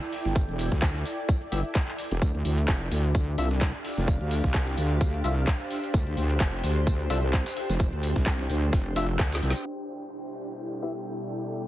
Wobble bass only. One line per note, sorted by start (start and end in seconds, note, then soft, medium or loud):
0.25 0.47 G1 loud
0.49 0.70 E1 medium
0.72 1.04 D2 medium
1.52 1.63 G1 medium
2.11 2.20 E1 medium
2.22 2.33 D2 loud
2.35 2.43 D2 loud
2.45 2.67 D2 medium
2.68 2.90 F1 medium
2.91 3.36 D2 loud
3.38 3.72 C2 medium
3.98 4.19 F1 loud
4.21 4.42 D2 medium
4.44 4.76 C2 loud
4.78 5.22 D2 loud
5.24 5.46 C2 medium
5.94 6.05 D2 loud
6.07 6.15 D2 loud
6.17 6.39 D2 medium
6.40 6.62 F1 medium
6.64 7.08 D2 loud
7.10 7.44 C2 medium
7.69 7.91 F1 loud
7.93 8.14 D2 loud
8.16 8.48 C2 medium
8.50 8.71 D2 loud
8.73 9.18 F1 loud
9.19 9.41 D2 loud
9.43 9.54 C2 loud